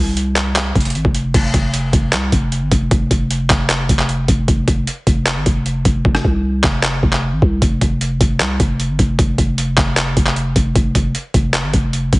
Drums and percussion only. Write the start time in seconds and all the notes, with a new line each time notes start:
0.17 closed hi-hat
0.36 clap, closed hi-hat
0.56 clap, closed hi-hat
0.75 kick, closed hi-hat
0.80 closed hi-hat
0.85 closed hi-hat
0.90 closed hi-hat
0.95 closed hi-hat
1.05 kick
1.15 closed hi-hat
1.34 kick, closed hi-hat, crash
1.54 kick, closed hi-hat
1.74 closed hi-hat
1.93 kick, closed hi-hat
2.13 clap, closed hi-hat
2.32 kick, closed hi-hat
2.52 closed hi-hat
2.71 kick, closed hi-hat
2.91 kick, closed hi-hat
3.11 kick, closed hi-hat
3.31 closed hi-hat
3.50 kick, clap, closed hi-hat
3.70 clap, closed hi-hat
3.89 kick, closed hi-hat
3.99 clap
4.09 closed hi-hat
4.28 kick, closed hi-hat
4.48 kick, closed hi-hat
4.68 kick, closed hi-hat
4.87 closed hi-hat
5.07 kick, closed hi-hat
5.26 clap, closed hi-hat
5.46 kick, closed hi-hat
5.66 closed hi-hat
5.85 kick, closed hi-hat
6.05 kick
6.15 cross-stick
6.25 kick
6.64 kick, clap
6.83 clap
7.03 kick
7.13 clap
7.42 kick
7.62 kick, closed hi-hat
7.81 kick, closed hi-hat
8.01 closed hi-hat
8.21 kick, closed hi-hat
8.40 clap, closed hi-hat
8.60 kick, closed hi-hat
8.80 closed hi-hat
8.99 kick, closed hi-hat
9.19 kick, closed hi-hat
9.38 kick, closed hi-hat
9.58 closed hi-hat
9.78 kick, clap, closed hi-hat
9.97 clap, closed hi-hat
10.17 kick, closed hi-hat
10.27 clap
10.36 closed hi-hat
10.56 kick, closed hi-hat
10.76 kick, closed hi-hat
10.95 kick, closed hi-hat
11.15 closed hi-hat
11.34 kick, closed hi-hat
11.54 clap, closed hi-hat
11.74 kick, closed hi-hat
11.93 closed hi-hat
12.13 kick, closed hi-hat